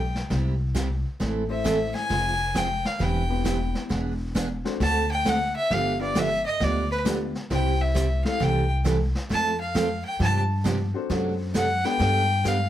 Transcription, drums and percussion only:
0.15 snare soft
0.30 brush sweep medium
0.30 kick soft
0.30 snare medium
0.75 kick soft
0.75 snare medium
0.75 hi-hat pedal medium
1.20 brush sweep medium
1.20 kick soft
1.20 snare soft
1.65 kick soft
1.65 snare medium
1.65 hi-hat pedal medium
1.95 snare soft
2.10 brush sweep medium
2.10 kick soft
2.10 snare soft
2.55 kick soft
2.55 snare medium
2.55 hi-hat pedal medium
2.85 snare soft
3.00 brush sweep soft
3.00 kick soft
3.00 snare soft
3.45 kick soft
3.45 snare medium
3.45 hi-hat pedal medium
3.75 snare soft
3.90 brush sweep soft
3.90 kick soft
3.90 snare medium
4.35 kick soft
4.35 snare medium
4.35 hi-hat pedal medium
4.65 snare soft
4.80 brush sweep medium
4.80 kick soft
4.80 snare soft
5.25 kick soft
5.25 snare medium
5.25 hi-hat pedal medium
5.71 brush sweep medium
5.71 kick soft
5.71 snare soft
6.15 kick soft
6.15 snare medium
6.15 hi-hat pedal medium
6.60 brush sweep medium
6.60 kick soft
6.60 snare soft
7.05 kick soft
7.05 snare medium
7.05 hi-hat pedal medium
7.35 snare soft
7.50 brush sweep medium
7.50 kick soft
7.50 snare medium
7.95 kick soft
7.95 snare medium
7.95 hi-hat pedal medium
8.25 snare soft
8.40 brush sweep medium
8.40 kick soft
8.40 snare medium
8.85 kick soft
8.85 snare medium
8.85 hi-hat pedal soft
9.15 snare soft
9.30 brush sweep medium
9.30 kick soft
9.30 snare soft
9.75 kick soft
9.75 snare medium
9.75 hi-hat pedal medium
10.20 brush sweep soft
10.20 kick soft
10.20 snare soft
10.65 kick soft
10.65 snare medium
10.65 hi-hat pedal medium
11.10 brush sweep medium
11.10 kick soft
11.10 snare soft
11.55 kick soft
11.55 snare medium
11.55 hi-hat pedal medium
11.85 snare soft
12.00 brush sweep soft
12.00 kick soft
12.00 snare medium
12.45 kick soft
12.45 snare medium
12.45 hi-hat pedal medium

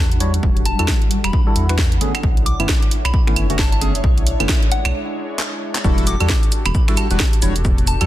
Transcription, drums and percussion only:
0.12 closed hi-hat soft
0.20 open hi-hat loud
0.34 closed hi-hat medium
0.43 kick loud
0.57 closed hi-hat soft
0.65 open hi-hat loud
0.79 closed hi-hat medium
0.79 claves medium
0.88 kick loud
0.88 snare loud
1.02 closed hi-hat soft
1.11 open hi-hat loud
1.24 finger snap medium
1.24 closed hi-hat medium
1.24 claves medium
1.33 kick loud
1.56 open hi-hat loud
1.69 finger snap medium
1.69 closed hi-hat medium
1.78 kick loud
1.78 snare loud
1.92 closed hi-hat soft
2.01 open hi-hat loud
2.15 finger snap medium
2.15 closed hi-hat medium
2.15 claves medium
2.23 kick loud
2.37 closed hi-hat soft
2.46 open hi-hat loud
2.60 closed hi-hat medium
2.60 claves medium
2.69 kick loud
2.69 snare loud
2.82 closed hi-hat soft
2.91 open hi-hat loud
3.05 finger snap medium
3.05 closed hi-hat medium
3.05 claves medium
3.14 kick loud
3.27 finger snap medium
3.36 open hi-hat loud
3.36 claves medium
3.50 open hi-hat medium
3.59 kick loud
3.59 snare loud
3.72 closed hi-hat soft
3.81 open hi-hat loud
3.95 closed hi-hat medium
4.04 kick loud
4.18 closed hi-hat soft
4.27 open hi-hat loud
4.40 closed hi-hat medium
4.40 claves medium
4.49 kick loud
4.49 snare loud
4.63 closed hi-hat soft
4.72 open hi-hat loud
4.85 finger snap medium
4.85 closed hi-hat medium
4.85 claves medium
5.39 clap loud
5.75 clap medium
5.84 kick loud
5.84 shaker soft
5.98 closed hi-hat soft
5.98 shaker soft
6.07 open hi-hat loud
6.07 shaker medium
6.20 closed hi-hat medium
6.20 claves medium
6.20 shaker soft
6.29 kick loud
6.29 snare loud
6.29 shaker soft
6.43 closed hi-hat soft
6.43 shaker soft
6.52 open hi-hat loud
6.52 shaker medium
6.66 finger snap medium
6.66 closed hi-hat medium
6.66 claves medium
6.66 shaker soft
6.75 kick loud
6.75 shaker soft
6.88 finger snap medium
6.88 shaker soft
6.97 open hi-hat loud
6.97 claves medium
6.97 shaker medium
7.11 open hi-hat medium
7.11 shaker soft
7.20 kick loud
7.20 snare loud
7.20 shaker soft
7.33 closed hi-hat medium
7.33 shaker soft
7.42 open hi-hat loud
7.42 shaker medium
7.56 closed hi-hat medium
7.56 shaker soft
7.65 kick loud
7.65 shaker soft
7.78 closed hi-hat soft
7.78 shaker soft
7.87 open hi-hat loud
7.87 shaker medium
8.01 closed hi-hat medium
8.01 claves medium
8.01 shaker soft

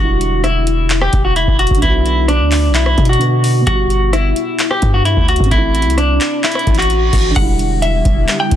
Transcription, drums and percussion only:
0.21 closed hi-hat medium
0.44 cross-stick medium
0.44 closed hi-hat medium
0.67 closed hi-hat medium
0.90 clap loud
0.90 closed hi-hat medium
1.01 cross-stick loud
1.13 kick medium
1.13 closed hi-hat medium
1.36 closed hi-hat medium
1.48 kick loud
1.59 closed hi-hat medium
1.67 kick medium
1.67 closed hi-hat medium
1.75 closed hi-hat medium
1.82 kick loud
1.82 closed hi-hat medium
2.06 closed hi-hat medium
2.28 cross-stick medium
2.28 closed hi-hat medium
2.52 clap medium
2.52 open hi-hat medium
2.75 clap loud
2.75 closed hi-hat medium
2.86 cross-stick loud
2.98 kick medium
2.98 closed hi-hat soft
3.05 closed hi-hat medium
3.13 closed hi-hat medium
3.21 closed hi-hat medium
3.44 open hi-hat medium
3.67 kick loud
3.67 closed hi-hat medium
3.90 closed hi-hat medium
4.13 cross-stick medium
4.13 closed hi-hat medium
4.36 closed hi-hat medium
4.59 clap loud
4.59 closed hi-hat medium
4.71 cross-stick loud
4.82 kick medium
4.82 closed hi-hat medium
5.05 closed hi-hat medium
5.17 kick loud
5.28 closed hi-hat medium
5.36 kick loud
5.36 closed hi-hat medium
5.44 closed hi-hat medium
5.51 kick loud
5.51 closed hi-hat medium
5.75 closed hi-hat medium
5.82 closed hi-hat medium
5.90 closed hi-hat medium
5.98 cross-stick medium
5.98 closed hi-hat medium
6.21 clap medium
6.21 closed hi-hat medium
6.44 clap loud
6.44 closed hi-hat medium
6.51 cross-stick loud
6.51 closed hi-hat medium
6.59 closed hi-hat medium
6.67 kick medium
6.67 closed hi-hat soft
6.75 clap medium
6.75 closed hi-hat medium
6.82 closed hi-hat medium
6.90 closed hi-hat medium
7.13 kick medium
7.13 open hi-hat medium
7.36 kick loud
7.36 closed hi-hat medium
7.36 crash loud
7.59 closed hi-hat medium
7.82 closed hi-hat medium
8.05 kick medium
8.05 closed hi-hat medium
8.28 clap loud
8.28 closed hi-hat medium
8.51 kick medium
8.51 closed hi-hat medium

